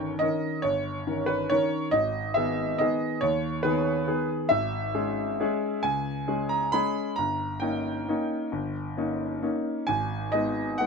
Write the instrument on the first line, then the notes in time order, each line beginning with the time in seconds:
grand piano
Already playing: G1 D#3 C#4 A#4 C#5 G5
0.19 D#3 C#4 A#4 D#5
0.62 G1 C#5
1.07 D#3 C#4 A#4
1.26 B4
1.50 D#3 C#4 A#4 C#5
1.91 G#1 D#5
2.34 D#3 B3 G#4 E5
2.78 D#3 B3 G#4 D#5
3.21 D#2 C#5
3.63 D#3 B3 G#4 B4
4.07 D#3 B3 G#4
4.49 G#1 E5
4.94 G#3 C#4 G#4
5.40 G#3 C#4 G#4
5.83 C#2 G#5
6.28 G#3 C#4 G#4
6.49 A#5
6.72 G#3 C#4 G#4 B5
7.16 G1 A#5
7.60 A#3 C#4 D#4 G5
8.09 A#3 C#4 D#4
8.52 G1
8.97 A#3 C#4 D#4
9.42 A#3 C#4 D#4
9.87 G#1 G#5
10.32 G#3 B3 D#4 D#5
10.78 G#3 B3 D#4 F#5